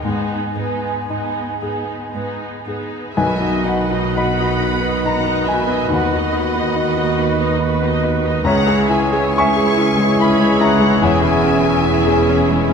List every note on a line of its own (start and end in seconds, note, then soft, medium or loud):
0.02 0.11 G#2 soft
0.02 3.12 G#2 soft
0.02 0.55 B3 soft
0.02 0.55 D#4 soft
0.02 0.55 G#4 soft
0.02 0.55 B4 soft
0.02 2.62 G#5 medium
0.56 0.64 G#2 soft
0.56 1.08 B3 soft
0.56 1.41 B3 soft
0.56 1.07 D#4 soft
0.56 1.06 G#4 soft
0.56 1.06 B4 soft
1.07 1.17 G#2 soft
1.07 1.60 B3 soft
1.07 1.59 D#4 soft
1.07 1.93 D#4 soft
1.07 1.57 G#4 soft
1.07 1.58 B4 soft
1.58 1.70 G#2 soft
1.58 2.11 B3 soft
1.58 2.11 D#4 soft
1.58 2.11 G#4 soft
1.58 2.11 B4 soft
1.62 2.45 G#4 soft
2.12 2.22 G#2 soft
2.12 2.64 B3 soft
2.12 2.64 D#4 soft
2.12 2.62 G#4 soft
2.12 2.62 B4 soft
2.12 2.97 B4 soft
2.63 2.74 G#2 soft
2.63 3.14 B3 soft
2.63 3.14 D#4 soft
2.63 3.13 G#4 soft
2.63 3.13 B4 soft
2.68 3.17 G#4 soft
3.13 5.89 B1 medium
3.13 5.89 B2 soft
3.13 8.42 D#3 soft
3.13 8.41 B3 soft
3.13 8.41 D#4 soft
3.13 8.41 F#4 soft
3.13 3.38 F#4 soft
3.13 3.38 B4 soft
3.13 8.41 B4 soft
3.13 3.63 D#5 soft
3.13 3.61 E5 medium
3.13 3.62 G#5 medium
3.13 3.63 G#5 medium
3.13 8.21 B5 soft
3.17 5.89 B1 soft
3.17 3.63 B4 soft
3.39 3.65 D#4 soft
3.39 3.82 F#4 soft
3.39 3.65 D#5 soft
3.63 4.06 D#4 soft
3.63 3.91 F#4 soft
3.63 3.91 B4 soft
3.63 4.15 D#5 soft
3.63 4.16 F#5 soft
3.63 4.13 F#5 soft
3.91 4.16 D#4 soft
3.91 4.30 F#4 soft
3.91 4.16 D#5 soft
4.13 4.53 D#4 soft
4.13 4.38 F#4 soft
4.13 4.38 B4 soft
4.13 5.02 F#5 medium
4.13 5.05 B5 medium
4.17 5.02 D#5 soft
4.17 5.02 F#5 soft
4.17 5.01 B5 medium
4.39 4.62 D#4 soft
4.39 4.75 F#4 soft
4.39 4.61 D#5 soft
4.61 4.96 D#4 soft
4.61 4.84 F#4 soft
4.61 4.84 B4 soft
4.81 5.17 B3 soft
4.81 5.05 D#4 soft
4.81 5.05 D#5 soft
5.03 5.40 D#4 soft
5.03 5.25 F#4 soft
5.03 5.25 B4 soft
5.03 5.47 F#5 medium
5.03 5.46 A#5 medium
5.03 5.49 A#5 medium
5.26 5.61 B3 soft
5.26 5.48 D#4 soft
5.26 5.49 D#5 soft
5.46 5.83 D#4 soft
5.46 5.70 F#4 soft
5.46 5.70 B4 soft
5.46 5.91 E5 medium
5.46 5.89 G#5 medium
5.46 5.92 G#5 soft
5.67 5.91 B3 soft
5.67 5.92 D#4 soft
5.67 5.92 D#5 soft
5.89 8.39 D#2 medium
5.89 8.41 D#2 medium
5.89 6.13 F#4 soft
5.89 6.13 B4 soft
5.89 8.03 D#5 medium
5.89 7.99 F#5 medium
5.93 8.41 D#2 medium
5.93 7.17 D#3 medium
5.93 8.00 B4 soft
5.93 8.00 D#5 soft
5.93 8.00 F#5 medium
6.13 6.36 D#4 soft
6.13 6.48 F#4 soft
6.13 6.36 D#5 soft
6.33 6.68 D#4 soft
6.33 6.57 F#4 soft
6.33 6.57 B4 soft
6.55 6.79 D#4 soft
6.55 6.90 F#4 soft
6.55 6.79 D#5 soft
6.76 7.10 D#4 soft
6.76 6.98 F#4 soft
6.80 6.98 B4 soft
6.97 7.20 D#4 soft
6.97 7.32 F#4 soft
6.97 7.21 D#5 soft
7.18 7.52 D#4 soft
7.18 7.41 F#4 soft
7.18 7.41 B4 soft
7.40 7.74 B3 soft
7.40 7.62 D#4 soft
7.40 7.63 D#5 soft
7.59 7.94 D#4 soft
7.63 7.82 F#4 soft
7.63 7.82 B4 soft
7.82 8.15 B3 soft
7.82 8.04 D#4 soft
7.82 8.04 D#5 soft
8.04 8.37 D#4 soft
8.04 8.25 F#4 soft
8.04 8.25 B4 soft
8.24 8.45 B3 soft
8.24 8.45 D#4 soft
8.24 8.46 D#5 soft
8.44 10.97 C#2 medium
8.44 10.98 C#2 medium
8.44 12.73 E3 medium
8.44 8.65 C#4 medium
8.44 12.73 C#4 medium
8.44 10.99 E4 medium
8.44 8.65 G#4 medium
8.44 12.73 G#4 soft
8.44 12.73 C#5 medium
8.44 8.87 C#5 medium
8.44 8.87 E5 medium
8.44 8.87 F#5 medium
8.44 12.73 G#5 medium
8.44 8.86 A#5 medium
8.66 8.90 E4 soft
8.66 9.04 G#4 medium
8.66 8.90 C#5 soft
8.89 9.13 C#4 soft
8.89 9.26 E4 medium
8.89 9.13 G#4 soft
8.89 9.35 E5 medium
8.89 9.33 G#5 soft
8.89 9.36 G#5 medium
9.12 9.35 E4 soft
9.12 9.48 G#4 medium
9.12 9.35 C#5 soft
9.34 9.55 C#4 soft
9.34 9.69 E4 soft
9.34 9.55 G#4 soft
9.34 10.17 G#5 medium
9.34 10.19 C#6 medium
9.34 10.17 C#6 medium
9.39 10.17 E5 medium
9.39 10.17 G#5 medium
9.56 9.77 E4 medium
9.56 9.90 G#4 medium
9.56 9.78 C#5 soft
9.77 9.99 C#4 medium
9.77 10.11 E4 medium
9.77 9.98 G#4 soft
9.97 10.31 G#3 soft
9.97 10.19 E4 soft
9.97 10.19 C#5 soft
10.18 10.38 C#4 medium
10.18 10.52 E4 medium
10.18 10.38 G#4 medium
10.18 10.59 G#5 medium
10.18 10.61 B5 medium
10.18 10.59 B5 medium
10.39 10.73 G#3 medium
10.39 10.60 E4 soft
10.39 10.60 C#5 soft
10.58 10.80 C#4 medium
10.58 10.94 E4 medium
10.58 10.80 G#4 medium
10.58 11.02 F#5 medium
10.58 11.02 A#5 medium
10.58 10.99 A#5 medium
10.79 11.01 G#3 medium
10.79 10.98 E4 medium
10.79 11.01 C#5 medium
11.00 12.73 E1 medium
11.00 12.73 E2 medium
11.00 11.20 E4 medium
11.00 11.20 G#4 medium
11.00 12.73 G#4 medium
11.00 12.73 E5 medium
11.00 12.73 G#5 medium
11.04 12.73 C#5 soft
11.04 12.73 E5 medium
11.20 11.43 C#4 medium
11.20 11.40 E4 medium
11.20 11.55 G#4 medium
11.41 11.77 C#4 medium
11.41 11.63 E4 medium
11.41 11.64 G#4 medium
11.64 11.86 C#4 medium
11.64 11.86 E4 medium
11.64 11.98 G#4 medium
11.86 12.20 C#4 medium
11.86 12.06 E4 medium
11.86 12.06 G#4 medium
12.06 12.28 C#4 medium
12.06 12.28 E4 medium
12.06 12.41 G#4 medium
12.29 12.63 C#4 medium
12.29 12.49 E4 medium
12.29 12.50 G#4 medium
12.49 12.73 G#3 soft
12.49 12.72 C#4 medium
12.49 12.72 E4 medium
12.69 12.73 C#4 medium